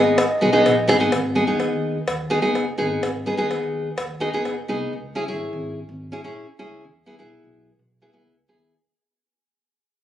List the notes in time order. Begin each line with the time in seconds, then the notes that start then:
Already playing: G#1 B3 D#4 G#4
0.01 D#5
0.08 D#5
0.16 D#5, cowbell
0.22 D#5
0.31 D#5
0.38 B1 B3 D#4 D#5
0.42 G#4 D#5
0.53 B3 D#4 G#4 D#5
0.61 D#5
0.65 A#1 D#5, cowbell
0.88 G#1 B3 D#4 G#4, cowbell
1.00 B3 D#4 G#4
1.12 G#1, cowbell
1.35 B3 D#4 G#4
1.47 D#2 B3 D#4 G#4
1.60 cowbell
1.73 D#2
2.08 D#2, cowbell
2.30 B3 D#4 G#4
2.42 F#1 B3 D#4 G#4
2.55 cowbell
2.78 G#1 B3 D#4 G#4
3.02 G#1, cowbell
3.26 B3 D#4 G#4
3.37 D#2 B3 D#4 G#4
3.51 cowbell
3.63 D#2
3.98 D#2, cowbell
4.20 B3 D#4 G#4
4.33 F#1 B3 D#4 G#4
4.45 cowbell
4.68 C2 B3 D#4 G#4
4.93 C#2
5.15 C#4 E4 G#4
5.28 G#1 C#4 E4 G#4
5.53 G#1
5.89 G#1
6.12 C#4 E4 G#4
6.24 A#1 C#4 E4 G#4
6.59 C#2 C#4 E4 G#4
6.84 E2
7.06 B3 E4 G#4
7.19 B1 B3 E4 G#4
7.44 B1
7.79 B1
8.01 B3 E4 G#4
8.13 C#2 B3 E4 G#4
8.26 C#2
8.48 D#2 B3 E4 G#4